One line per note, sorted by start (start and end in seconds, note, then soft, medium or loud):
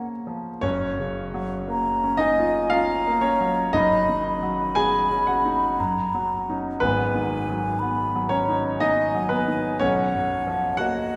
0.00 0.60 F#2 medium
0.00 0.66 A#3 soft
0.00 0.63 C#4 soft
0.00 0.66 G#4 soft
0.27 0.64 F3 soft
0.61 3.70 F#1 medium
0.61 3.71 F#2 medium
0.61 2.02 C#4 medium
0.61 2.19 C#5 medium
0.99 1.54 C#3 soft
1.34 1.89 F#3 medium
1.68 2.23 A#3 soft
1.68 2.22 A#5 medium
2.04 2.59 C#4 medium
2.17 2.68 D#4 medium
2.17 2.71 D#5 medium
2.17 2.75 G#5 medium
2.38 2.70 F4 medium
2.70 3.21 C#4 medium
2.70 3.19 F4 medium
2.70 3.22 F5 medium
2.70 3.75 A#5 medium
3.07 3.61 A#3 medium
3.21 3.71 C#4 medium
3.21 3.74 C#5 medium
3.41 3.75 F#3 soft
3.73 5.73 F#1 medium
3.73 5.74 F#2 medium
3.73 4.72 D#4 medium
3.73 4.75 D#5 loud
3.73 4.25 B5 medium
4.09 4.63 D#3 soft
4.27 5.81 B5 medium
4.43 4.96 F#3 soft
4.75 5.30 B3 soft
4.75 5.23 G#4 medium
4.75 5.26 G#5 loud
5.11 5.65 C#4 soft
5.27 6.26 F#4 medium
5.27 6.29 F#5 medium
5.45 5.79 D#4 soft
5.80 6.78 F#2 medium
5.80 6.59 A#5 medium
6.14 6.68 F#3 soft
6.49 6.79 C#4 soft
6.49 6.79 D#4 soft
6.80 9.78 G#1 medium
6.80 9.78 G#2 medium
6.80 7.81 B3 medium
6.80 8.30 B4 medium
6.80 7.81 G#5 medium
7.15 7.67 D#3 soft
7.50 8.01 F#3 soft
7.79 8.35 B3 soft
7.79 8.30 B5 medium
8.15 8.68 F#3 soft
8.29 8.77 C#4 medium
8.29 8.80 C#5 medium
8.29 8.62 A#5 medium
8.49 8.79 D#4 soft
8.77 9.27 D#4 medium
8.77 9.31 D#5 medium
8.77 9.83 G#5 medium
8.83 9.29 B3 soft
9.15 9.68 F#3 medium
9.29 9.77 B3 medium
9.29 9.80 B4 medium
9.48 9.81 D#3 soft
9.79 11.16 B1 medium
9.79 10.77 C#4 medium
9.79 10.81 C#5 loud
9.79 10.83 F#5 medium
10.15 10.68 F#2 soft
10.47 11.01 F3 soft
10.77 11.16 A#3 soft
10.77 11.16 F#4 medium
10.77 11.16 D#5 medium
10.77 11.16 F#5 loud